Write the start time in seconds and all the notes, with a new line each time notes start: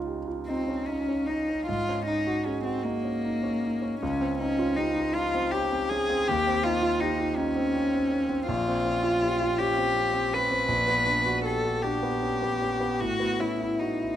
Already playing: C#2 C#4 D#4 F4
0.07 G4
0.28 F4
0.47 C4 D#4
0.68 C#4
0.86 C#4 D#4
1.09 C#4
1.26 D#4
1.49 C#4
1.67 G#2 F4
1.89 C#4
2.06 D#4
2.27 F#4
2.45 C#4 G#4
2.64 C4 F#4
2.83 A#3 D#4
3.04 C#4
3.24 D#4
3.43 C#4
3.63 D#4
3.82 C#4
4.01 C#2 C#4
4.21 C4
4.39 C#4 D#4
4.59 F4
4.76 D#4 G4
4.96 F4
5.14 D#4 F4
5.35 C4
5.51 C#4 G4
5.72 C4
5.90 C#4 G#4
6.10 C4
6.28 D#2 G4
6.47 C4
6.63 D#4 F4
6.82 F4
7.00 D#4 G4
7.20 F4
7.37 C#4 D#4
7.56 C4
7.75 C#4
7.94 C4
8.11 C#4
8.29 C4
8.47 A#1 F4
8.68 C4
8.85 C#4
9.03 F4
9.22 G4
9.41 F4
9.59 C#4 G4
9.77 C4
9.96 C#4
10.14 C4
10.33 C#4 B4
10.51 C4
10.68 A#1
10.88 B3
11.06 D4
11.26 F#4
11.45 G4 A4
11.65 F#4
11.82 D4 G4
12.03 B3
12.22 C#4
12.42 B3
12.62 C#4
12.81 B3
13.00 A2 F#4
13.20 B3
13.40 C#4 E4
13.60 E4
13.79 D#4 F#4
14.01 E4